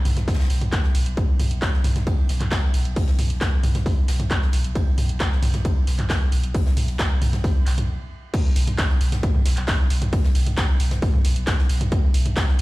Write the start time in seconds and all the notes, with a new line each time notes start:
0.05 B1, mid tom, open hi-hat, ride
0.17 B1, snare, closed hi-hat, mid tom
0.27 kick, snare, open hi-hat, ride
0.34 snare, ride
0.39 snare, ride
0.44 snare, ride
0.50 B1, snare, open hi-hat, ride
0.61 B1, closed hi-hat, mid tom
0.72 kick, snare, clap, closed hi-hat, ride
0.84 snare
0.95 B1, open hi-hat, ride
1.06 B1, closed hi-hat
1.17 kick, closed hi-hat, ride
1.40 B1, mid tom, open hi-hat, ride
1.51 B1, closed hi-hat
1.62 kick, snare, clap, closed hi-hat, ride
1.74 snare
1.84 B1, mid tom, open hi-hat, ride
1.96 B1, snare, closed hi-hat, mid tom
2.06 kick, closed hi-hat, ride
2.29 B1, snare, open hi-hat, ride
2.41 B1, clap, closed hi-hat, mid tom
2.51 kick, snare, clap, open hi-hat, ride
2.74 B1, open hi-hat, ride
2.85 B1, closed hi-hat
2.96 kick, closed hi-hat, open hi-hat
3.07 snare
3.18 B1, mid tom, open hi-hat, ride
3.30 B1, closed hi-hat
3.41 kick, snare, clap, closed hi-hat, ride
3.63 B1, mid tom, open hi-hat, ride
3.75 B1, snare, closed hi-hat, mid tom
3.86 kick, open hi-hat, ride
4.08 B1, snare, open hi-hat, ride
4.19 B1, snare, closed hi-hat, mid tom
4.31 kick, clap, closed hi-hat, ride
4.42 snare
4.52 B1, open hi-hat, ride
4.64 B1, closed hi-hat
4.75 kick, closed hi-hat, ride
4.97 B1, mid tom, open hi-hat, ride
5.09 B1, closed hi-hat
5.20 kick, snare, clap, closed hi-hat, ride
5.32 snare
5.42 B1, mid tom, open hi-hat, ride
5.53 B1, snare, closed hi-hat, mid tom
5.65 kick, closed hi-hat, ride
5.87 B1, snare, open hi-hat, ride
5.99 B1, clap, closed hi-hat, mid tom
6.10 kick, snare, clap, open hi-hat, ride
6.32 B1, open hi-hat
6.44 B1, closed hi-hat
6.54 kick, closed hi-hat, open hi-hat
6.66 snare
6.77 B1, mid tom, open hi-hat, ride
6.88 B1, closed hi-hat
6.99 kick, snare, clap, closed hi-hat, ride
7.22 B1, mid tom, open hi-hat, ride
7.33 B1, snare, closed hi-hat, mid tom
7.44 kick, open hi-hat, ride
7.66 B1, snare, clap, open hi-hat, ride
7.78 B1, closed hi-hat, mid tom
8.34 kick, closed hi-hat, crash, ride
8.56 B1, open hi-hat, ride
8.67 B1, closed hi-hat, mid tom
8.78 kick, snare, clap, closed hi-hat, ride
8.90 snare
9.01 B1, open hi-hat, ride
9.12 B1, snare, closed hi-hat, mid tom
9.23 kick, closed hi-hat, ride
9.35 mid tom
9.45 B1, snare, open hi-hat, ride
9.57 B1, clap, closed hi-hat
9.68 kick, snare, clap, open hi-hat, ride
9.90 B1, open hi-hat, ride
10.02 B1, closed hi-hat, mid tom
10.13 kick, closed hi-hat, open hi-hat
10.24 snare
10.35 B1, open hi-hat, ride
10.46 B1, closed hi-hat, mid tom
10.57 kick, snare, clap, closed hi-hat, ride
10.80 B1, open hi-hat, ride
10.91 B1, snare, closed hi-hat, mid tom
11.02 kick, open hi-hat, ride
11.14 mid tom
11.24 B1, snare, open hi-hat, ride
11.36 B1, closed hi-hat
11.47 kick, snare, clap, closed hi-hat, ride
11.59 snare
11.69 B1, open hi-hat, ride
11.81 B1, closed hi-hat, mid tom
11.91 kick, closed hi-hat, ride
12.14 B1, open hi-hat, ride
12.26 B1, closed hi-hat, mid tom
12.36 kick, snare, clap, closed hi-hat, ride
12.49 snare
12.58 ride